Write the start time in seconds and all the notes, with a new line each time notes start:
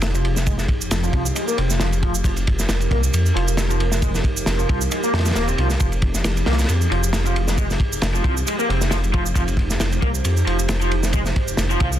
Already playing: F1 F3 D#4 G4 G#4
0.02 snare, ride, shaker
0.15 F3, ride, shaker
0.25 ride
0.37 snare, shaker
0.46 G#3, kick, ride, shaker
0.58 snare, shaker
0.68 kick, ride
0.81 F1, shaker
0.91 F1, snare, ride, shaker
1.04 F3, shaker
1.13 C2 F3, kick, ride
1.26 shaker
1.36 G#3, ride, shaker
1.48 A#3, shaker
1.58 F1 C4, ride
1.70 snare, shaker
1.80 F3, snare, ride, shaker
1.93 ride, shaker
2.03 F3, kick, ride
2.15 shaker
2.24 F1 F3 A#4, kick, ride, shaker
2.36 ride, shaker
2.47 kick, ride
2.59 snare, shaker
2.69 F1, snare, ride, shaker
2.80 ride, shaker
2.91 C2 A#3, kick, ride
3.04 shaker
3.13 F2, ride, shaker
3.26 shaker
3.36 F1 F3, ride
3.48 shaker
3.57 snare, ride, shaker
3.70 F3, ride, shaker
3.80 ride
3.92 snare, shaker
4.02 G#3, kick, ride, shaker
4.15 snare, shaker
4.24 kick, ride
4.37 F1, shaker
4.46 F1, snare, ride, shaker
4.59 F3, shaker
4.69 C2 F3, kick, ride
4.81 shaker
4.91 G#3, ride, shaker
5.03 A#3, shaker
5.13 F2 F3, snare, ride
5.19 snare, ride
5.25 snare, ride, shaker
5.31 snare, ride
5.35 D#1 A#3, snare, ride, shaker
5.48 C4, ride, shaker
5.58 C2 F3, ride
5.70 snare, shaker
5.80 F1 F3 G#4, kick, ride, shaker
5.92 ride, shaker
6.02 kick, ride
6.15 snare, shaker
6.24 F1, snare, ride, shaker
6.37 ride, shaker
6.46 C2 A#3, snare, ride
6.53 snare, ride
6.59 snare, ride, shaker
6.64 snare, ride
6.69 F2, ride, shaker
6.81 shaker
6.91 F1 F3, ride
7.04 shaker
7.13 snare, ride, shaker
7.25 F3, ride, shaker
7.36 ride
7.48 snare, shaker
7.58 G#3, kick, ride, shaker
7.70 snare, shaker
7.80 kick, ride
7.93 F1, shaker
8.02 F1, snare, ride, shaker
8.14 F3, shaker
8.24 C2 F3, kick, ride
8.37 shaker
8.47 G#3, ride, shaker
8.59 A#3, shaker
8.69 F1 C4, ride
8.81 snare, shaker
8.91 F3, snare, ride, shaker
9.04 ride, shaker
9.14 F3, kick, ride
9.26 shaker
9.35 F1 F3 C5, kick, ride, shaker
9.48 ride, shaker
9.57 kick, ride
9.70 snare, shaker
9.80 F1, snare, ride, shaker
9.92 ride, shaker
10.02 C2 A#3, kick, ride
10.15 shaker
10.25 F2, ride, shaker
10.37 shaker
10.47 F1 F3, ride
10.59 shaker
10.69 snare, ride, shaker
10.81 F3, ride, shaker
10.91 ride
11.03 snare, shaker
11.13 G#3, kick, ride, shaker
11.26 snare, shaker
11.36 kick, ride
11.48 F1, shaker
11.57 F1, snare, ride, shaker
11.70 F3, shaker
11.80 C2 F3, kick, ride
11.93 shaker